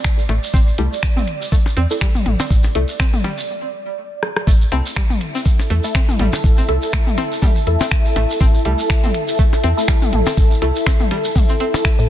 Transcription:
Already playing: D5
0.04 finger snap, kick, closed hi-hat, shekere
0.19 shekere
0.29 A1 A3, closed hi-hat, percussion blips
0.44 shekere
0.54 A1 C4, kick, shekere
0.68 shekere
0.78 C2 G3 A3 E4 A4, closed hi-hat
0.93 shekere
1.03 finger snap, kick, shekere
1.17 C4, mid tom, shekere
1.27 closed hi-hat
1.42 shekere
1.52 A3, kick, shekere
1.66 percussion blips, shekere
1.77 E2 C4, closed hi-hat
1.91 A3 E4 A4, shekere
2.01 G3, finger snap, kick, closed hi-hat, shekere
2.15 mid tom, shekere
2.26 A1, closed hi-hat, mid tom
2.40 C4, percussion blips, shekere
2.50 A1, kick, shekere
2.63 percussion blips, shekere
2.75 C2 A3 E4 A4, closed hi-hat
2.88 shekere
3.00 C4, finger snap, kick, shekere
3.13 mid tom, shekere
3.24 G3, closed hi-hat, percussion blips
3.38 shekere
4.23 cross-stick
4.37 cross-stick
4.47 A1 A3 E4, kick, shekere
4.61 shekere
4.70 C2 A3 C4 E4 A4 E5, closed hi-hat
4.86 shekere
4.96 G3, finger snap, kick, shekere
5.10 mid tom, shekere
5.20 A5, closed hi-hat
5.35 C4, shekere
5.46 kick, shekere
5.59 percussion blips, shekere
5.70 E2 A3, closed hi-hat
5.84 A3 E4 A4, shekere
5.95 C4, finger snap, kick, shekere
6.09 mid tom, shekere
6.19 A1 G3, closed hi-hat, mid tom
6.33 percussion blips, shekere
6.44 A1, kick, shekere
6.58 C4, shekere
6.68 C2 A3 E4 A4, closed hi-hat
6.82 shekere
6.93 A3, finger snap, kick, shekere
7.07 mid tom, shekere
7.18 C4, closed hi-hat, percussion blips
7.32 shekere
7.42 G3, kick, mid tom, shekere
7.55 shekere
7.67 E2 A3 E4 A4, closed hi-hat
7.81 C4, percussion blips, shekere
7.91 finger snap, kick, shekere
8.05 shekere
8.16 A1 A3, closed hi-hat, percussion blips
8.30 shekere
8.40 A1 C4, kick, shekere
8.54 shekere
8.65 C2 G3 A3 E4 A4, closed hi-hat
8.79 shekere
8.90 finger snap, kick, shekere
9.03 C4, mid tom, shekere
9.14 closed hi-hat
9.28 shekere
9.38 A3, kick, shekere
9.53 percussion blips, shekere
9.64 E2 C4, closed hi-hat
9.77 A3 E4 A4, shekere
9.88 G3, finger snap, kick, shekere
10.02 mid tom, shekere
10.13 A1, closed hi-hat, mid tom
10.26 C4, percussion blips, shekere
10.37 A1, kick, shekere
10.51 shekere
10.62 C2 A3 E4 A4, closed hi-hat
10.76 shekere
10.86 C4, finger snap, kick, shekere
11.00 mid tom, shekere
11.11 G3, closed hi-hat, percussion blips
11.24 shekere
11.36 kick, mid tom, shekere
11.49 C4, shekere
11.60 C4, closed hi-hat
11.74 percussion blips, shekere
11.85 E4, finger snap, kick, shekere
11.99 A2, shekere

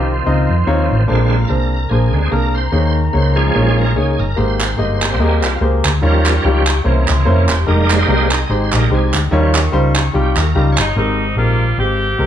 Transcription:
Already playing: C2 D#3 F3 C4 D#4 F4 G4 C5 D#5 F5 C6
0.26 C#2 C4 D#4 F4 D#5
0.49 F2
0.67 D#2 C4 D#4 F4 C#5
0.91 A1
1.08 A#1 A#2 D3 G#3 A#3 C4 D4 F4 G#4 C5 G#5 A#5
1.48 C2 A#3 D4 G#4 A#4 C5
1.89 A#1 A#3 D4 G#4 C5
2.13 D2 D3 G#3 C4
2.31 C2 A#3 D4 G#4 A#4
2.55 C5
2.72 D#2 D#3 A#3 D#4 G#4 C#5 D#5
3.13 C#2 A#3 D#4 G#4 C5 C#5
3.36 F3 G#3 C#4 G#4
3.55 A#1 A#3 D#4 G#4 C#5
3.78 A#4
3.96 C#2 A#3 D#4 G#4 C#5
4.19 G1 A#4
4.36 G#1 G#2 A#3 G4 G#4 C5 G5 A#5
4.61 clap
4.77 G1 A#3 G4 G#4 D#5
5.01 G3 A#3 C4, clap
5.19 D#2 A#3 G4 G#4 D#5
5.44 C2 F4, clap
5.61 C#2 A#3 G4 G#4 C5
5.85 D2, clap
6.01 D#2 D#3 F3 G3 C#4 D#4 F4 A#4 C#5 D#5 F5 G5 C#6
6.26 clap
6.43 C#2 G3 D#4 F4 G4
6.67 clap
6.84 C2 C3 E3 A#3 C#4 E4 C5 C#5 E5 A#5 C6
7.08 C#2, clap
7.25 F2 A#3 C#4 E4 C5
7.49 E1 G4, clap
7.66 F1 G3 G#3 A#3 D#4 G4 A#4 D#5 G5 G#5
7.90 C5, clap
8.08 C2 G#3 D#4 G4 A#4
8.31 D#5, clap
8.49 G#1 G#3 D#4 G4 C5
8.72 A#1 G3 G#3 A#3 D#4 A#4, clap
8.87 C2 G#3 D#4 G4 A#4 C5
8.94 G#4
9.14 D2, clap
9.31 D#2 D#3 F3 G3 C#4 D#4 F4 C#5 F5 C#6
9.55 clap
9.72 C#2 G3 D#4 F4 C5
9.96 clap
10.13 C2 G3 D#4 F4 G4
10.37 D#2 A#4, clap
10.55 C#2 G3 D#4 F4 G4 A#4
10.72 C#5
10.78 G1 D#4, clap
10.96 G#1 G#2 G3 G#3 C4 D#4 G4 A#4
11.36 A#1 G#3 A#3 C4 F4 G4 A#4
11.78 G#1 G#3 A#3 C4 G4 C5
12.18 C2 G#3 C4 G4 A#4

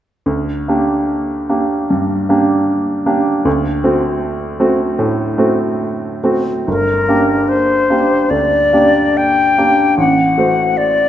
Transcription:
0.26 D2
0.68 A#3 D4 G4
1.49 A#3 D4 G4
1.90 G2
2.29 A#3 D4 G4
3.06 A#3 D4 G4
3.45 D2
3.84 A3 C4 F#4
4.60 A3 C4 F#4
4.99 A2
5.38 A3 C4 F#4
6.24 A3 C4 F#4
6.67 G1 A#4
7.09 A#3 D4 G4
7.49 C5
7.90 A#3 D4 G4
8.30 D2 D5
8.73 A#3 D4 G4
9.17 G5
9.58 A#3 D4 G4
9.98 A1 F#5
10.38 A3 F#4 C5
10.77 D5

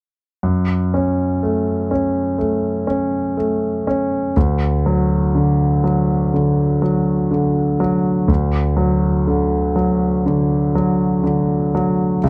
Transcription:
0.43 F#2
0.94 C#4
1.43 A3
1.91 C#4
2.38 A3
2.87 C#4
3.37 A3
3.87 C#4
4.36 D2
4.86 F#3
5.35 D3
5.84 F#3
6.34 D3
6.82 F#3
7.31 D3
7.80 F#3
8.28 D2
8.77 F#3
9.27 D3
9.76 F#3
10.26 D3
10.75 F#3
11.24 D3
11.75 F#3
12.23 C#2

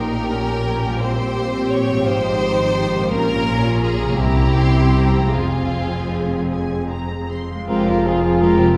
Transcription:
Already playing: A#1 A#2 A#3 C#4 D#4 G4 A#4 G5
0.31 C#4
0.67 C#4
0.85 A#2
0.89 G3
0.94 C4
0.99 E4 C5 G5
1.03 C4
1.72 C#5
1.91 G#2
1.95 F3
1.99 C4
2.04 G#1 D#4 F4 C5
2.08 G#2
2.95 A#2
3.00 A#3
3.04 C#4
3.08 A#2 G4 A#4
3.13 A#1 C#4 F4 A#5
3.84 G#4
4.02 C3
4.07 A#3
4.11 C#4
4.16 C2 C4 E4 G4
4.20 C2 A#5
4.59 C6
4.96 A#5
5.16 F3
5.21 G#3
5.25 C4
5.29 F4
5.34 F1 F2 C4 G#4 G#5
6.50 G#5
6.90 A#5
7.31 C6
7.50 F3
7.55 G#3
7.59 C4
7.64 F1 C4 F4
7.68 F2 G#3 C4 F4 G4 A#4
7.87 F3 C4 F4
8.04 G#3 C4 F4 G#4
8.22 F3 C4 F4
8.40 G#3 C4 F4 G4 A#4
8.57 C3 F3 C4 F4
8.62 G3
8.66 C4
8.71 E4

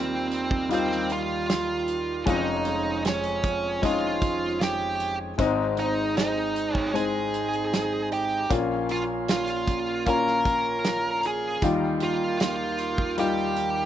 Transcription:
Already playing: D#2 D#3 G3 A#3 C4 D#4 F4 C5
0.32 closed hi-hat
0.51 kick
0.69 G3 D#4 F4, closed hi-hat
0.73 C4 C5
0.91 snare
1.10 F4 F5, closed hi-hat
1.50 snare, closed hi-hat
1.88 D#4, closed hi-hat
2.25 F1 F2 F3 G#3 C#4 D#4 F4, kick, closed hi-hat
2.30 D#5
2.65 G#3 C#4 F4, closed hi-hat
3.05 G#3 C#4 C#5, snare, closed hi-hat
3.24 closed hi-hat
3.43 kick, closed hi-hat
3.82 G#3 C#4 D#4 F4 F5, kick, closed hi-hat
4.22 F4, kick, closed hi-hat
4.61 G4 G5, snare, closed hi-hat
4.99 C#4, closed hi-hat
5.38 G#1 G#2 G#3 C4 D#4, kick, closed hi-hat
5.77 C4 D#4 G#4 D#5, closed hi-hat
6.16 C4 D#4 D#5, snare, closed hi-hat
6.56 closed hi-hat
6.75 C#5, kick
6.94 G#3 C4 D#4 G#4 G#5, closed hi-hat
7.34 closed hi-hat
7.54 closed hi-hat
7.74 snare, closed hi-hat
8.11 D#4 G4 G5, closed hi-hat
8.50 A#1 A#2 A#3 C#4 F4, kick, closed hi-hat
8.89 A#3 C#4 F4 F5, closed hi-hat
9.28 A#3 F4 F5, snare, closed hi-hat
9.48 closed hi-hat
9.68 kick, closed hi-hat
10.06 A#3 C#4 F4 A#4 A#5, kick, closed hi-hat
10.27 snare
10.45 F4, kick, closed hi-hat
10.85 snare, closed hi-hat
11.23 C#4 G#4, closed hi-hat
11.27 G#5
11.62 D#2 D#3 G3 D#4 F4 G4, kick, closed hi-hat
12.00 A#3 D#4 F4 F5, closed hi-hat
12.40 A#3 F4 F5, snare, closed hi-hat
12.79 closed hi-hat
12.98 kick
13.17 G3 D#4 F4 G4 G5, closed hi-hat
13.57 F4, closed hi-hat

